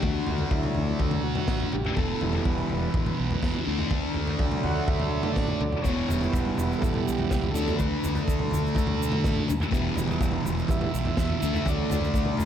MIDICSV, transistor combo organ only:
0, 0, Header, 1, 2, 480
1, 0, Start_track
1, 0, Tempo, 484653
1, 32, Time_signature, 4, 2, 24, 8
1, 12331, End_track
2, 0, Start_track
2, 0, Title_t, "Transistor combo organ"
2, 0, Program_c, 0, 18
2, 29, Note_on_c, 0, 66, 99
2, 520, Note_on_c, 0, 54, 52
2, 524, Note_on_c, 0, 57, 47
2, 526, Note_off_c, 0, 66, 0
2, 532, Note_on_c, 0, 64, 83
2, 536, Note_on_c, 0, 62, 60
2, 970, Note_off_c, 0, 64, 0
2, 991, Note_off_c, 0, 62, 0
2, 1003, Note_on_c, 0, 62, 84
2, 1202, Note_off_c, 0, 54, 0
2, 1203, Note_off_c, 0, 57, 0
2, 1220, Note_on_c, 0, 66, 91
2, 1222, Note_off_c, 0, 62, 0
2, 1674, Note_off_c, 0, 66, 0
2, 1715, Note_on_c, 0, 67, 86
2, 1941, Note_on_c, 0, 69, 98
2, 1962, Note_off_c, 0, 67, 0
2, 2186, Note_on_c, 0, 55, 63
2, 2190, Note_on_c, 0, 59, 49
2, 2203, Note_on_c, 0, 64, 64
2, 2440, Note_on_c, 0, 71, 74
2, 2443, Note_off_c, 0, 69, 0
2, 2875, Note_off_c, 0, 55, 0
2, 2878, Note_off_c, 0, 59, 0
2, 2884, Note_off_c, 0, 64, 0
2, 3600, Note_off_c, 0, 71, 0
2, 4334, Note_on_c, 0, 54, 48
2, 4340, Note_on_c, 0, 57, 48
2, 4362, Note_on_c, 0, 62, 62
2, 4586, Note_on_c, 0, 78, 101
2, 4822, Note_on_c, 0, 76, 99
2, 4839, Note_off_c, 0, 78, 0
2, 5276, Note_off_c, 0, 76, 0
2, 5279, Note_on_c, 0, 74, 90
2, 5747, Note_off_c, 0, 54, 0
2, 5750, Note_off_c, 0, 57, 0
2, 5761, Note_off_c, 0, 62, 0
2, 5764, Note_on_c, 0, 73, 93
2, 5793, Note_off_c, 0, 74, 0
2, 6022, Note_on_c, 0, 55, 59
2, 6041, Note_on_c, 0, 59, 53
2, 6047, Note_on_c, 0, 64, 66
2, 6168, Note_off_c, 0, 73, 0
2, 6180, Note_on_c, 0, 73, 67
2, 6246, Note_on_c, 0, 71, 85
2, 6263, Note_off_c, 0, 73, 0
2, 6713, Note_on_c, 0, 69, 86
2, 6757, Note_off_c, 0, 71, 0
2, 6963, Note_on_c, 0, 67, 89
2, 6983, Note_off_c, 0, 69, 0
2, 7430, Note_off_c, 0, 55, 0
2, 7439, Note_off_c, 0, 59, 0
2, 7439, Note_on_c, 0, 69, 87
2, 7442, Note_off_c, 0, 64, 0
2, 7463, Note_on_c, 0, 57, 56
2, 7466, Note_on_c, 0, 54, 56
2, 7467, Note_on_c, 0, 62, 63
2, 7475, Note_off_c, 0, 67, 0
2, 7680, Note_off_c, 0, 69, 0
2, 7686, Note_on_c, 0, 71, 90
2, 7789, Note_off_c, 0, 57, 0
2, 7790, Note_off_c, 0, 54, 0
2, 7791, Note_off_c, 0, 62, 0
2, 8147, Note_off_c, 0, 71, 0
2, 8168, Note_on_c, 0, 69, 71
2, 9341, Note_off_c, 0, 69, 0
2, 9632, Note_on_c, 0, 55, 59
2, 9638, Note_on_c, 0, 64, 61
2, 9650, Note_on_c, 0, 59, 52
2, 10316, Note_off_c, 0, 55, 0
2, 10319, Note_off_c, 0, 64, 0
2, 10326, Note_off_c, 0, 59, 0
2, 10590, Note_on_c, 0, 59, 45
2, 10594, Note_on_c, 0, 55, 53
2, 10600, Note_on_c, 0, 76, 98
2, 10605, Note_on_c, 0, 64, 52
2, 10807, Note_off_c, 0, 59, 0
2, 10809, Note_off_c, 0, 55, 0
2, 10815, Note_off_c, 0, 64, 0
2, 11572, Note_on_c, 0, 74, 93
2, 11575, Note_on_c, 0, 54, 53
2, 11575, Note_on_c, 0, 57, 54
2, 11578, Note_on_c, 0, 62, 60
2, 11584, Note_off_c, 0, 76, 0
2, 11882, Note_off_c, 0, 54, 0
2, 11883, Note_off_c, 0, 57, 0
2, 11884, Note_off_c, 0, 62, 0
2, 12241, Note_off_c, 0, 74, 0
2, 12331, End_track
0, 0, End_of_file